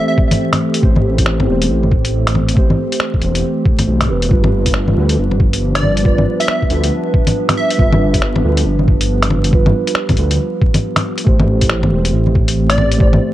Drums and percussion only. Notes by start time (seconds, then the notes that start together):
0.18 kick
0.31 closed hi-hat, low bongo
0.53 finger snap, closed hi-hat, low bongo
0.74 closed hi-hat
0.83 kick
0.96 low bongo
1.18 kick, closed hi-hat
1.26 finger snap
1.40 low bongo
1.62 closed hi-hat
1.83 low bongo
1.92 kick
2.05 closed hi-hat
2.27 finger snap, closed hi-hat
2.35 low bongo
2.49 closed hi-hat
2.57 kick
2.70 low bongo
2.92 closed hi-hat
3.00 finger snap
3.14 kick
3.22 closed hi-hat
3.35 closed hi-hat
3.66 kick
3.79 closed hi-hat, low bongo
4.01 finger snap, closed hi-hat, low bongo
4.22 closed hi-hat
4.31 kick
4.44 low bongo
4.66 kick, closed hi-hat
4.74 finger snap
4.88 low bongo
5.09 closed hi-hat
5.31 low bongo
5.40 kick
5.53 closed hi-hat
5.75 finger snap, closed hi-hat
5.83 low bongo
5.97 closed hi-hat
6.05 kick
6.18 low bongo
6.40 closed hi-hat
6.48 finger snap
6.62 kick
6.70 closed hi-hat
6.84 closed hi-hat
7.14 kick
7.27 closed hi-hat, low bongo
7.49 finger snap, closed hi-hat, low bongo
7.70 closed hi-hat
7.79 kick
7.92 low bongo
8.14 kick, closed hi-hat
8.22 finger snap
8.36 low bongo
8.57 closed hi-hat
8.79 low bongo
8.88 kick
9.01 closed hi-hat
9.23 finger snap, closed hi-hat
9.30 low bongo
9.44 closed hi-hat
9.53 kick
9.66 low bongo
9.87 closed hi-hat
9.95 finger snap
10.09 kick, closed hi-hat, low bongo
10.17 closed hi-hat
10.31 closed hi-hat
10.62 kick
10.74 closed hi-hat, low bongo
10.96 finger snap, closed hi-hat, low bongo
11.18 closed hi-hat
11.27 kick
11.40 low bongo
11.61 kick, closed hi-hat
11.69 finger snap
11.83 low bongo
12.05 closed hi-hat
12.27 low bongo
12.35 kick
12.48 closed hi-hat
12.70 finger snap, closed hi-hat
12.78 low bongo
12.92 closed hi-hat
13.00 kick
13.13 low bongo